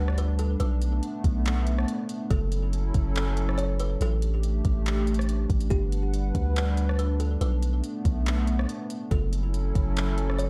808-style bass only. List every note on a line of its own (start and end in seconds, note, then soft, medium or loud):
0.00 0.56 D2 loud
0.60 1.01 B1 loud
1.24 1.85 B1 loud
2.31 2.92 F#1 loud
2.94 3.97 F#1 loud
4.01 4.62 A1 loud
4.65 5.46 A1 loud
5.50 5.70 A1 loud
5.71 6.32 G1 loud
6.35 7.37 D2 loud
7.41 7.82 B1 loud
8.05 8.66 B1 loud
9.11 9.73 F#1 loud
9.75 10.50 F#1 loud